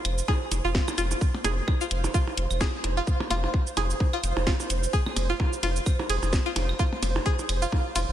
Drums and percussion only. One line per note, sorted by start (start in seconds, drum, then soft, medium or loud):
0.05 closed hi-hat medium
0.05 claves medium
0.18 cabasa soft
0.28 kick loud
0.28 percussion blips medium
0.51 closed hi-hat medium
0.51 percussion blips soft
0.51 cabasa soft
0.75 kick loud
0.75 snare loud
0.88 percussion blips medium
0.88 cabasa soft
0.88 claves medium
0.98 closed hi-hat medium
0.98 cabasa medium
1.11 percussion blips soft
1.11 cabasa medium
1.21 kick loud
1.21 cabasa soft
1.34 percussion blips medium
1.44 closed hi-hat loud
1.44 percussion blips medium
1.44 cabasa soft
1.68 kick loud
1.68 percussion blips soft
1.68 claves medium
1.81 cabasa soft
1.91 closed hi-hat loud
2.04 percussion blips medium
2.04 cabasa soft
2.14 kick loud
2.14 cabasa soft
2.27 percussion blips soft
2.37 closed hi-hat loud
2.51 cabasa soft
2.51 claves medium
2.61 kick loud
2.61 snare loud
2.61 percussion blips medium
2.61 cabasa soft
2.84 closed hi-hat loud
2.84 percussion blips soft
3.07 kick loud
3.07 cabasa soft
3.20 percussion blips medium
3.30 closed hi-hat medium
3.30 percussion blips medium
3.30 cabasa soft
3.30 claves medium
3.44 percussion blips soft
3.54 kick loud
3.67 cabasa soft
3.77 closed hi-hat medium
3.77 percussion blips medium
3.90 cabasa soft
4.00 kick loud
4.00 percussion blips soft
4.13 claves medium
4.24 closed hi-hat loud
4.24 cabasa soft
4.37 percussion blips medium
4.47 kick loud
4.47 snare loud
4.60 percussion blips soft
4.60 cabasa soft
4.70 closed hi-hat loud
4.70 cabasa soft
4.83 cabasa soft
4.93 kick loud
4.93 cabasa soft
5.06 percussion blips soft
5.06 percussion blips medium
5.06 claves medium
5.16 closed hi-hat medium
5.16 ride medium
5.16 percussion blips medium
5.16 cabasa soft
5.40 kick loud
5.40 percussion blips medium
5.53 cabasa soft
5.63 closed hi-hat medium
5.63 ride medium
5.63 percussion blips soft
5.76 cabasa soft
5.86 kick loud
5.86 cabasa soft
5.86 claves medium
5.99 percussion blips medium
6.10 closed hi-hat medium
6.10 ride medium
6.23 percussion blips soft
6.23 cabasa soft
6.33 kick loud
6.33 snare loud
6.33 cabasa soft
6.56 closed hi-hat medium
6.56 ride medium
6.56 percussion blips medium
6.69 claves medium
6.79 kick loud
6.79 percussion blips soft
6.79 cabasa soft
6.93 percussion blips medium
7.03 closed hi-hat medium
7.03 ride medium
7.03 percussion blips medium
7.03 cabasa soft
7.16 percussion blips medium
7.26 kick loud
7.39 percussion blips soft
7.39 cabasa soft
7.49 closed hi-hat medium
7.49 ride medium
7.49 claves medium
7.62 cabasa soft
7.72 kick loud
7.72 percussion blips medium
7.96 closed hi-hat medium
7.96 ride medium
7.96 percussion blips soft
7.96 cabasa soft